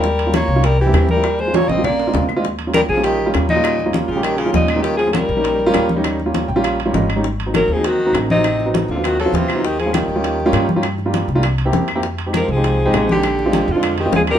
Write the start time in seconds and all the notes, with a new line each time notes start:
Already playing: D#2 G3 A#4
0.04 high bongo, high conga
0.19 high conga, high timbale
0.26 G3 A#3 C#4 F4
0.34 A#3 C#5, high bongo, high conga, high timbale, low timbale, claves
0.48 C2, high conga
0.56 G3 A#3 C#4 F4
0.64 G3 A#4, high bongo, high conga, high timbale
0.79 E3 G4, high conga
0.86 G3 A#3 C4 E4
0.93 D#2, high bongo, low bongo, high conga, high timbale, low timbale, claves
1.09 G3 A#4, high conga
1.17 G3 A#3 C4 E4
1.24 high bongo, high conga, high timbale, claves
1.39 G#3 C5, high bongo, high conga
1.47 G3 A#3 C#4 F4
1.54 A#3 C#5, high bongo, high conga, high timbale
1.68 A#1 C4 D#5, high bongo, high conga, low timbale
1.77 G3 A#3 C#4 F4
1.84 A#3 D5, high bongo, low conga, low timbale, claves
2.00 low timbale
2.07 G#3 C4 D4 F4
2.14 D#2, high bongo, low bongo, low conga, low timbale
2.29 high bongo, low conga, low timbale, claves
2.36 G#3 C4 D4 F4
2.44 high bongo, high conga
2.59 high conga, high timbale
2.67 G3 A#3 C#4 F4
2.74 G3 A#4, high bongo, high conga, high timbale, low timbale, claves
2.89 A#1 F3 G#4, high conga
2.97 G3 A#3 C#4 F4
3.04 D#3 G4, high bongo, high conga, high timbale
3.20 high conga
3.26 G3 A#3 C#4 F4
3.34 D#2, high bongo, low bongo, high conga, high timbale, low timbale, claves
3.48 A#2 D#4, high conga
3.56 G3 A#3 C#4 F4
3.64 high bongo, high conga, high timbale, claves
3.79 high bongo, high conga
3.86 G3 A#3 C#4 F4
3.93 high bongo, high conga, high timbale, low timbale
4.08 A#1 C#3 F4, high bongo, high conga
4.15 G3 A#3 C#4 G4
4.22 D#3 G4, high bongo, high conga, high timbale, claves
4.37 C#3 F4, high conga, high timbale
4.46 G3 A#3 C#4 F4
4.52 D#2 A#2 D#4, high bongo, low bongo, high conga, low timbale
4.68 high bongo, high conga, high timbale, claves
4.76 G3 A#3 C#4 F4
4.82 D#3 G4, high bongo, high conga
4.97 F3 G#4, high conga, high timbale
5.07 G3 A#3 C#4 F4
5.12 G3 A#4, high bongo, high conga, high timbale, low timbale, claves
5.29 A#1, high conga
5.36 G3 A#3 C#4 D#4
5.44 high bongo, high conga, high timbale
5.59 high conga
5.66 G3 A#3 C#4 F4
5.74 D#2, high bongo, low bongo, high conga, high timbale, low timbale, claves
5.89 high conga
5.96 G3 A#3 C#4 D#4
6.04 high bongo, high conga, high timbale, claves
6.20 high bongo, high conga
6.25 G3 A#3 C#4 F4
6.34 high bongo, high conga, high timbale, low timbale
6.48 A#1 G5, high bongo, high conga
6.56 G3 A#3 C#4 F4
6.64 F5, high bongo, high conga, high timbale, claves
6.79 high conga, high timbale
6.85 G3 A#3 C#4 F4
6.93 G#1 D#5, high bongo, low bongo, high conga, low timbale
7.09 high bongo, high conga, high timbale, claves
7.16 G3 A#3 C#4 D#4
7.24 high bongo, high conga
7.40 high conga, high timbale
7.46 F#3 A#3 C4 D#4
7.54 F#3 A#4, high bongo, high conga, high timbale, low timbale, claves
7.68 D#2, high conga
7.72 F3 G#4
7.76 F#3 A#3 C4 D#4
7.84 D#3 F#4, high bongo, high conga, high timbale
8.00 high conga
8.06 F#3 A#3 C4 D#4
8.13 A1, high bongo, low bongo, high conga, high timbale, low timbale, claves
8.30 C3 D#4, high conga
8.36 F#3 A#3 C4 D#4
8.44 high bongo, high conga, high timbale, claves
8.60 high bongo, high conga
8.66 F#3 B3 C4 D#4
8.74 high bongo, high conga, high timbale, low timbale
8.88 D#2 D3 F4, high bongo, high conga
8.95 F#3 B3 C4 F4
9.04 D#3 F#4, high bongo, high conga, high timbale, claves
9.19 F#3 A4, high conga, high timbale
9.25 F#3 B3 C4 F4
9.32 D#2 C3 F4, high bongo, low bongo, high conga, low timbale
9.48 high bongo, high conga, high timbale, claves
9.55 F#3 B3 C4 D#4
9.65 D#3 G4, high bongo, high conga
9.79 F3 G#4, high conga, high timbale
9.86 G3 A#3 C#4 F4
9.93 D#3 G4, high bongo, high conga, high timbale, low timbale, claves
10.08 D#2, high conga
10.15 G3 A#3 C#4 F4
10.24 high bongo, high conga, high timbale
10.40 high conga
10.46 G3 A#3 C#4 F4
10.52 G2, high bongo, low bongo, high conga, high timbale, low timbale, claves
10.69 high conga
10.76 G3 A#3 C#4 F4
10.83 high bongo, high conga, high timbale, claves
10.98 high bongo, high conga
11.06 G3 A#3 D4 F4
11.14 high bongo, high conga, high timbale, low timbale
11.28 C2, high bongo, high conga
11.35 G3 A#3 D4 F4
11.43 high bongo, high conga, high timbale, claves
11.58 high conga, high timbale
11.65 A#3 C4 E4 G4
11.73 F2, high bongo, low bongo, high conga, low timbale
11.88 high bongo, high conga, high timbale, claves
11.95 A#3 C4 E4 G4
12.03 high bongo, high conga
12.18 high conga, high timbale
12.26 G#3 C4 D#4 G4
12.33 F3 A#4, high bongo, high conga, high timbale, low timbale, claves
12.48 C2 F3 G#4, high conga
12.56 G#3 C4 D#4 G4
12.64 high bongo, high conga, high timbale
12.80 high conga
12.85 G#3 C4 D#4 G4
12.93 A#1, high bongo, low bongo, high conga, high timbale, low timbale, claves
13.09 D3 G4, high conga
13.15 G#3 C4 D#4 G4
13.23 high bongo, high conga, high timbale, claves
13.39 high bongo, high conga
13.46 G#3 C4 D4 F4
13.53 high bongo, high conga, high timbale, low timbale
13.68 F2 D3 F4, high bongo, high conga
13.76 G#3 C4 D4 F4
13.83 high bongo, high conga, high timbale, claves
13.98 D#3 G4, high conga, high timbale
14.06 G#3 C4 D4 F4
14.12 D#2 F3 G#4, high bongo, low bongo, high conga, low timbale
14.27 G3 A#4, high bongo, high conga, high timbale, claves
14.35 G#3 C4 D4 F4